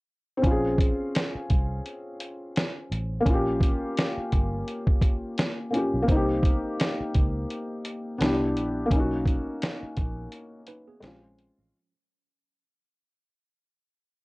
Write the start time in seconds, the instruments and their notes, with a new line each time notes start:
0.37 felt piano C4
0.42 fingered electric bass A#1, felt piano C#4, kick, closed hi-hat
0.47 felt piano F4
0.51 felt piano G#4
0.78 kick, closed hi-hat
1.15 snare, closed hi-hat
1.35 muted fingered electric bass stroke
1.50 fingered electric bass C2, kick, closed hi-hat
1.86 closed hi-hat
2.20 closed hi-hat
2.56 snare, closed hi-hat
2.91 fingered electric bass A1, closed hi-hat
3.20 felt piano A#3
3.25 fingered electric bass A#1, felt piano C#4, kick, closed hi-hat
3.30 felt piano F4
3.34 felt piano G4
3.61 kick, closed hi-hat
3.97 snare, closed hi-hat
4.17 muted fingered electric bass stroke
4.32 fingered electric bass G1, kick, closed hi-hat
4.68 closed hi-hat
4.87 kick
5.01 kick, closed hi-hat
5.38 snare, closed hi-hat
5.71 felt piano A#3 C#4, closed hi-hat
5.75 felt piano F4 G4
5.94 fingered electric bass B1
6.02 felt piano A#3
6.07 fingered electric bass C2, felt piano C4, kick, closed hi-hat
6.11 felt piano D#4
6.16 felt piano G4
6.43 kick, closed hi-hat
6.80 snare, closed hi-hat
7.00 muted fingered electric bass stroke
7.14 fingered electric bass C#2, kick, closed hi-hat
7.50 closed hi-hat
7.85 closed hi-hat
8.18 fingered electric bass C2, felt piano B3 D4, snare, closed hi-hat
8.23 felt piano E4 G4
8.56 fingered electric bass A#1, closed hi-hat
8.86 felt piano A#3
8.90 fingered electric bass B1, felt piano C#4, kick, closed hi-hat
8.95 felt piano D#4
8.99 felt piano F#4
9.25 kick, closed hi-hat
9.62 snare, closed hi-hat
9.83 muted fingered electric bass stroke
9.97 fingered electric bass A#1, kick, closed hi-hat
10.32 closed hi-hat
10.67 tine electric piano D#4 B4, closed hi-hat
10.88 tine electric piano B3 G#4
11.01 fingered electric bass A#1, felt piano G#3 C4, tine electric piano A#3 G4, snare, closed hi-hat
11.05 felt piano C#4 F4
11.23 tine electric piano G#3 F4
11.39 closed hi-hat
11.59 fingered electric bass A1, tine electric piano F3 C#4